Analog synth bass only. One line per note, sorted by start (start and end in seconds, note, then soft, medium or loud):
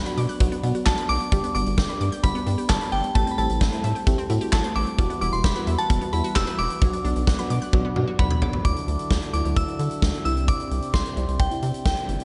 0.17 0.27 B2 loud
0.40 0.49 B1 loud
0.63 0.72 B2 loud
0.86 0.95 B1 loud
1.09 1.18 B1 medium
1.32 1.41 G1 loud
1.55 1.64 G1 loud
1.66 1.75 G1 loud
1.78 1.87 G1 loud
2.01 2.10 G2 loud
2.24 2.33 G1 loud
2.47 2.56 G2 loud
2.70 2.79 G1 loud
2.92 3.01 G1 loud
3.15 3.24 A1 loud
3.38 3.47 A1 loud
3.50 3.59 A1 loud
3.61 3.70 A1 loud
3.84 3.93 A2 loud
4.07 4.16 A1 loud
4.30 4.39 A2 loud
4.53 4.62 A1 loud
4.76 4.85 A1 loud
4.99 5.08 E1 loud
5.21 5.30 E1 loud
5.33 5.42 E1 medium
5.44 5.53 E1 loud
5.67 5.76 E2 loud
5.90 5.99 E1 loud
6.13 6.22 E2 loud
6.36 6.45 E1 loud
6.59 6.68 E1 loud
6.82 6.91 B1 loud
7.05 7.14 B1 loud
7.16 7.25 B1 loud
7.27 7.36 B1 loud
7.50 7.59 B2 loud
7.73 7.82 B1 loud
7.96 8.05 B2 loud
8.19 8.28 B1 loud
8.42 8.51 B1 loud
8.65 8.74 D2 loud
8.88 8.97 D2 loud
9.11 9.20 D2 loud
9.34 9.43 D2 loud
9.45 9.54 D2 loud
9.56 9.66 D2 loud
9.79 9.88 D3 loud
10.02 10.11 D2 loud
10.25 10.52 C2 loud
10.71 10.80 C2 loud
10.94 11.03 C2 loud
11.17 11.26 C2 loud
11.28 11.37 C2 medium
11.40 11.49 C2 loud
11.63 11.72 C3 loud
11.86 11.95 C2 loud
12.08 12.17 G1 medium